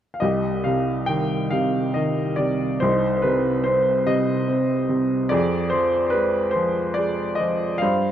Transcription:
0, 0, Header, 1, 2, 480
1, 0, Start_track
1, 0, Key_signature, -3, "minor"
1, 0, Tempo, 868307
1, 121, Time_signature, 6, 3, 24, 8
1, 1559, Tempo, 836820
1, 4597, End_track
2, 0, Start_track
2, 0, Title_t, "Upright piano"
2, 0, Program_c, 0, 0
2, 77, Note_on_c, 0, 77, 40
2, 110, Note_on_c, 0, 75, 59
2, 119, Note_off_c, 0, 77, 0
2, 119, Note_on_c, 0, 36, 47
2, 125, Note_on_c, 0, 67, 44
2, 213, Control_c, 0, 64, 127
2, 353, Note_on_c, 0, 77, 55
2, 364, Note_on_c, 0, 48, 39
2, 368, Note_off_c, 0, 75, 0
2, 584, Note_off_c, 0, 77, 0
2, 588, Note_on_c, 0, 79, 64
2, 603, Note_on_c, 0, 51, 38
2, 828, Note_off_c, 0, 67, 0
2, 832, Note_on_c, 0, 77, 61
2, 834, Note_off_c, 0, 48, 0
2, 842, Note_on_c, 0, 48, 42
2, 845, Note_off_c, 0, 79, 0
2, 1061, Note_off_c, 0, 77, 0
2, 1072, Note_on_c, 0, 75, 58
2, 1076, Note_off_c, 0, 51, 0
2, 1085, Note_on_c, 0, 51, 36
2, 1299, Note_off_c, 0, 75, 0
2, 1305, Note_on_c, 0, 74, 59
2, 1312, Note_off_c, 0, 48, 0
2, 1320, Note_on_c, 0, 48, 42
2, 1535, Note_off_c, 0, 36, 0
2, 1543, Note_off_c, 0, 51, 0
2, 1548, Note_on_c, 0, 72, 65
2, 1550, Note_off_c, 0, 48, 0
2, 1557, Note_off_c, 0, 74, 0
2, 1559, Note_on_c, 0, 36, 54
2, 1566, Control_c, 0, 64, 0
2, 1566, Note_on_c, 0, 63, 48
2, 1668, Control_c, 0, 64, 127
2, 1750, Note_off_c, 0, 72, 0
2, 1758, Note_on_c, 0, 72, 45
2, 1789, Note_on_c, 0, 71, 61
2, 1799, Note_off_c, 0, 72, 0
2, 1799, Note_on_c, 0, 48, 43
2, 2028, Note_on_c, 0, 72, 59
2, 2035, Note_on_c, 0, 60, 41
2, 2043, Note_off_c, 0, 71, 0
2, 2262, Note_off_c, 0, 63, 0
2, 2265, Note_off_c, 0, 48, 0
2, 2273, Note_on_c, 0, 48, 44
2, 2273, Note_on_c, 0, 75, 67
2, 2282, Note_off_c, 0, 72, 0
2, 2504, Note_off_c, 0, 60, 0
2, 2513, Note_on_c, 0, 60, 40
2, 2739, Note_off_c, 0, 48, 0
2, 2747, Note_on_c, 0, 48, 44
2, 2788, Note_off_c, 0, 75, 0
2, 2969, Note_off_c, 0, 36, 0
2, 2974, Note_off_c, 0, 60, 0
2, 2977, Note_on_c, 0, 74, 70
2, 2980, Note_off_c, 0, 48, 0
2, 2989, Note_on_c, 0, 41, 60
2, 2999, Control_c, 0, 64, 0
2, 3001, Note_on_c, 0, 68, 56
2, 3101, Control_c, 0, 64, 127
2, 3209, Note_on_c, 0, 72, 62
2, 3226, Note_on_c, 0, 53, 43
2, 3228, Note_off_c, 0, 74, 0
2, 3410, Note_off_c, 0, 72, 0
2, 3419, Note_on_c, 0, 72, 47
2, 3441, Note_on_c, 0, 71, 63
2, 3462, Note_off_c, 0, 72, 0
2, 3462, Note_on_c, 0, 56, 41
2, 3675, Note_on_c, 0, 72, 63
2, 3688, Note_off_c, 0, 68, 0
2, 3692, Note_off_c, 0, 53, 0
2, 3701, Note_on_c, 0, 53, 45
2, 3702, Note_off_c, 0, 71, 0
2, 3922, Note_on_c, 0, 74, 66
2, 3938, Note_off_c, 0, 56, 0
2, 3941, Note_off_c, 0, 72, 0
2, 3946, Note_on_c, 0, 56, 40
2, 4159, Note_on_c, 0, 75, 64
2, 4176, Note_off_c, 0, 53, 0
2, 4184, Note_on_c, 0, 53, 38
2, 4186, Note_off_c, 0, 74, 0
2, 4401, Note_off_c, 0, 75, 0
2, 4404, Note_on_c, 0, 77, 70
2, 4411, Note_off_c, 0, 41, 0
2, 4419, Note_off_c, 0, 56, 0
2, 4424, Note_off_c, 0, 53, 0
2, 4426, Note_on_c, 0, 72, 54
2, 4428, Note_on_c, 0, 43, 53
2, 4443, Control_c, 0, 64, 0
2, 4557, Control_c, 0, 64, 127
2, 4597, Note_off_c, 0, 43, 0
2, 4597, Note_off_c, 0, 72, 0
2, 4597, Note_off_c, 0, 77, 0
2, 4597, End_track
0, 0, End_of_file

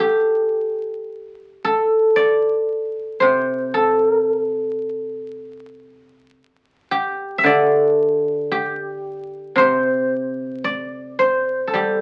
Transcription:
0, 0, Header, 1, 2, 480
1, 0, Start_track
1, 0, Tempo, 1081081
1, 490, Time_signature, 4, 2, 24, 8
1, 967, Tempo, 1050788
1, 2887, Tempo, 1067616
1, 4807, Tempo, 1115242
1, 5393, End_track
2, 0, Start_track
2, 0, Title_t, "Guzheng"
2, 0, Program_c, 0, 107
2, 0, Note_on_c, 0, 67, 51
2, 0, Note_on_c, 0, 69, 49
2, 0, Note_on_c, 0, 72, 58
2, 0, Note_on_c, 0, 74, 51
2, 195, Note_off_c, 0, 74, 0
2, 381, Note_off_c, 0, 72, 0
2, 728, Note_off_c, 0, 69, 0
2, 730, Note_on_c, 0, 69, 59
2, 959, Note_on_c, 0, 74, 64
2, 1047, Note_off_c, 0, 67, 0
2, 1434, Note_on_c, 0, 72, 54
2, 1443, Note_on_c, 0, 48, 44
2, 1679, Note_off_c, 0, 69, 0
2, 1681, Note_on_c, 0, 69, 57
2, 1802, Note_off_c, 0, 74, 0
2, 2339, Note_off_c, 0, 72, 0
2, 2682, Note_off_c, 0, 69, 0
2, 2884, Note_off_c, 0, 48, 0
2, 3126, Note_on_c, 0, 67, 66
2, 3337, Note_on_c, 0, 76, 58
2, 3361, Note_on_c, 0, 50, 48
2, 3372, Note_on_c, 0, 74, 74
2, 3844, Note_off_c, 0, 67, 0
2, 3846, Note_on_c, 0, 67, 63
2, 4110, Note_off_c, 0, 76, 0
2, 4202, Note_off_c, 0, 74, 0
2, 4314, Note_on_c, 0, 48, 47
2, 4324, Note_on_c, 0, 72, 78
2, 4802, Note_off_c, 0, 50, 0
2, 4803, Note_on_c, 0, 74, 66
2, 4900, Note_off_c, 0, 67, 0
2, 5037, Note_off_c, 0, 72, 0
2, 5038, Note_on_c, 0, 72, 62
2, 5247, Note_on_c, 0, 69, 33
2, 5273, Note_on_c, 0, 55, 41
2, 5278, Note_on_c, 0, 67, 45
2, 5393, Note_off_c, 0, 48, 0
2, 5393, Note_off_c, 0, 55, 0
2, 5393, Note_off_c, 0, 67, 0
2, 5393, Note_off_c, 0, 69, 0
2, 5393, Note_off_c, 0, 72, 0
2, 5393, Note_off_c, 0, 74, 0
2, 5393, End_track
0, 0, End_of_file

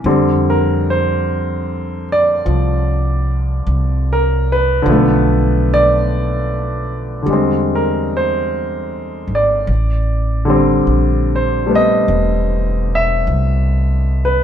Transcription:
0, 0, Header, 1, 3, 480
1, 0, Start_track
1, 0, Tempo, 1202405
1, 22, Time_signature, 4, 2, 24, 8
1, 5763, End_track
2, 0, Start_track
2, 0, Title_t, "Grand piano"
2, 0, Program_c, 0, 0
2, 0, Control_c, 0, 64, 127
2, 23, Note_on_c, 0, 50, 58
2, 24, Note_on_c, 0, 60, 58
2, 25, Note_on_c, 0, 55, 52
2, 28, Control_c, 0, 64, 0
2, 102, Control_c, 0, 64, 127
2, 199, Note_on_c, 0, 70, 72
2, 346, Note_off_c, 0, 70, 0
2, 360, Note_on_c, 0, 72, 72
2, 816, Note_off_c, 0, 72, 0
2, 848, Note_on_c, 0, 74, 78
2, 980, Note_on_c, 0, 53, 40
2, 1096, Note_off_c, 0, 74, 0
2, 1647, Note_on_c, 0, 70, 75
2, 1791, Note_off_c, 0, 70, 0
2, 1805, Note_on_c, 0, 71, 76
2, 1919, Note_off_c, 0, 50, 0
2, 1925, Note_on_c, 0, 50, 60
2, 1932, Note_off_c, 0, 53, 0
2, 1938, Note_on_c, 0, 53, 50
2, 1945, Note_off_c, 0, 60, 0
2, 1946, Note_off_c, 0, 55, 0
2, 1949, Control_c, 0, 64, 0
2, 1954, Note_on_c, 0, 57, 56
2, 1969, Note_on_c, 0, 59, 61
2, 2009, Control_c, 0, 64, 127
2, 2259, Note_off_c, 0, 71, 0
2, 2290, Note_on_c, 0, 74, 85
2, 2537, Note_off_c, 0, 74, 0
2, 2878, Note_off_c, 0, 50, 0
2, 2884, Note_on_c, 0, 50, 45
2, 2897, Note_on_c, 0, 55, 46
2, 2901, Note_off_c, 0, 53, 0
2, 2909, Note_off_c, 0, 57, 0
2, 2910, Control_c, 0, 64, 0
2, 2913, Note_on_c, 0, 56, 40
2, 2917, Note_off_c, 0, 59, 0
2, 2925, Note_on_c, 0, 60, 51
2, 2987, Control_c, 0, 64, 127
2, 3096, Note_on_c, 0, 70, 63
2, 3236, Note_off_c, 0, 70, 0
2, 3260, Note_on_c, 0, 72, 71
2, 3706, Note_off_c, 0, 72, 0
2, 3733, Note_on_c, 0, 74, 70
2, 3854, Note_off_c, 0, 50, 0
2, 3861, Note_off_c, 0, 55, 0
2, 3868, Note_off_c, 0, 56, 0
2, 3869, Control_c, 0, 64, 0
2, 3875, Note_off_c, 0, 60, 0
2, 3943, Control_c, 0, 64, 127
2, 3978, Note_off_c, 0, 74, 0
2, 4172, Note_on_c, 0, 50, 60
2, 4182, Note_on_c, 0, 55, 55
2, 4191, Note_on_c, 0, 60, 60
2, 4533, Note_on_c, 0, 72, 66
2, 4650, Note_off_c, 0, 55, 0
2, 4656, Note_on_c, 0, 55, 43
2, 4659, Note_on_c, 0, 57, 40
2, 4667, Note_on_c, 0, 59, 50
2, 4674, Note_off_c, 0, 72, 0
2, 4692, Note_on_c, 0, 75, 80
2, 5140, Note_off_c, 0, 75, 0
2, 5170, Note_on_c, 0, 76, 83
2, 5322, Note_off_c, 0, 76, 0
2, 5688, Note_on_c, 0, 71, 76
2, 5763, Note_off_c, 0, 50, 0
2, 5763, Note_off_c, 0, 55, 0
2, 5763, Note_off_c, 0, 57, 0
2, 5763, Note_off_c, 0, 59, 0
2, 5763, Note_off_c, 0, 60, 0
2, 5763, Note_off_c, 0, 71, 0
2, 5763, End_track
3, 0, Start_track
3, 0, Title_t, "Upright bass"
3, 0, Program_c, 1, 32
3, 17, Note_on_c, 1, 41, 83
3, 965, Note_off_c, 1, 41, 0
3, 982, Note_on_c, 1, 36, 84
3, 1447, Note_off_c, 1, 36, 0
3, 1464, Note_on_c, 1, 36, 79
3, 1928, Note_off_c, 1, 36, 0
3, 1939, Note_on_c, 1, 35, 84
3, 2886, Note_off_c, 1, 35, 0
3, 2900, Note_on_c, 1, 40, 82
3, 3689, Note_off_c, 1, 40, 0
3, 3703, Note_on_c, 1, 32, 68
3, 3851, Note_off_c, 1, 32, 0
3, 3862, Note_on_c, 1, 33, 82
3, 4326, Note_off_c, 1, 33, 0
3, 4339, Note_on_c, 1, 34, 74
3, 4805, Note_off_c, 1, 34, 0
3, 4823, Note_on_c, 1, 28, 76
3, 5286, Note_off_c, 1, 28, 0
3, 5298, Note_on_c, 1, 36, 77
3, 5762, Note_off_c, 1, 36, 0
3, 5763, End_track
0, 0, End_of_file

